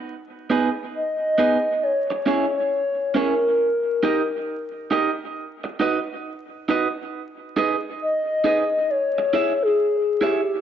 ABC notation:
X:1
M:4/4
L:1/16
Q:"Swing 16ths" 1/4=68
K:G#m
V:1 name="Soft synth lead"
z4 d4 c3 c3 A2- | A6 z8 z2 | z4 d4 c3 G3 =G2 |]
V:2 name="Clean electric guitar"
z2 [B,DGB]2 z2 [B,DGB]2 z2 [CEGc]2 z2 [CEGc]2 | z2 [D=GAd]2 z2 [DGAd]2 z2 [DFBd]2 z2 [DFBd]2 | z2 [DGBd]2 z2 [DGBd]2 z2 [EGce]2 z2 [EGce]2 |]